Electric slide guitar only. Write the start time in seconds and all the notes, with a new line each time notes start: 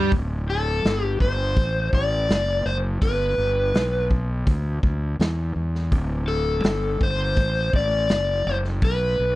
0.50 A4
1.05 G4
1.22 C5
1.95 D5
2.66 C5
3.03 B4
6.28 A4
7.03 C5
7.76 D5
8.47 C5
8.85 B4